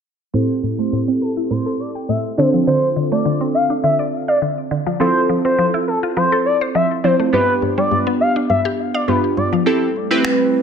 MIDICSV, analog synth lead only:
0, 0, Header, 1, 2, 480
1, 0, Start_track
1, 0, Key_signature, 0, "minor"
1, 0, Tempo, 582524
1, 282, Time_signature, 4, 2, 24, 8
1, 8753, End_track
2, 0, Start_track
2, 0, Title_t, "Analog synth lead"
2, 0, Program_c, 0, 81
2, 280, Note_on_c, 0, 72, 93
2, 452, Note_off_c, 0, 72, 0
2, 648, Note_on_c, 0, 72, 82
2, 820, Note_off_c, 0, 72, 0
2, 1002, Note_on_c, 0, 69, 73
2, 1092, Note_off_c, 0, 69, 0
2, 1243, Note_on_c, 0, 72, 79
2, 1414, Note_off_c, 0, 72, 0
2, 1482, Note_on_c, 0, 74, 81
2, 1573, Note_off_c, 0, 74, 0
2, 1721, Note_on_c, 0, 76, 80
2, 1812, Note_off_c, 0, 76, 0
2, 1961, Note_on_c, 0, 72, 77
2, 2052, Note_off_c, 0, 72, 0
2, 2202, Note_on_c, 0, 72, 105
2, 2373, Note_off_c, 0, 72, 0
2, 2569, Note_on_c, 0, 74, 76
2, 2740, Note_off_c, 0, 74, 0
2, 2921, Note_on_c, 0, 77, 80
2, 3012, Note_off_c, 0, 77, 0
2, 3160, Note_on_c, 0, 76, 82
2, 3252, Note_off_c, 0, 76, 0
2, 3529, Note_on_c, 0, 74, 79
2, 3610, Note_off_c, 0, 74, 0
2, 4120, Note_on_c, 0, 72, 100
2, 4292, Note_off_c, 0, 72, 0
2, 4490, Note_on_c, 0, 72, 80
2, 4661, Note_off_c, 0, 72, 0
2, 4841, Note_on_c, 0, 69, 70
2, 4932, Note_off_c, 0, 69, 0
2, 5082, Note_on_c, 0, 72, 82
2, 5253, Note_off_c, 0, 72, 0
2, 5321, Note_on_c, 0, 74, 84
2, 5412, Note_off_c, 0, 74, 0
2, 5562, Note_on_c, 0, 76, 74
2, 5653, Note_off_c, 0, 76, 0
2, 5800, Note_on_c, 0, 72, 72
2, 5892, Note_off_c, 0, 72, 0
2, 6041, Note_on_c, 0, 71, 100
2, 6212, Note_off_c, 0, 71, 0
2, 6407, Note_on_c, 0, 74, 79
2, 6579, Note_off_c, 0, 74, 0
2, 6763, Note_on_c, 0, 77, 78
2, 6853, Note_off_c, 0, 77, 0
2, 7000, Note_on_c, 0, 76, 80
2, 7091, Note_off_c, 0, 76, 0
2, 7368, Note_on_c, 0, 74, 78
2, 7449, Note_off_c, 0, 74, 0
2, 7482, Note_on_c, 0, 71, 81
2, 7572, Note_off_c, 0, 71, 0
2, 7723, Note_on_c, 0, 74, 75
2, 7814, Note_off_c, 0, 74, 0
2, 8753, End_track
0, 0, End_of_file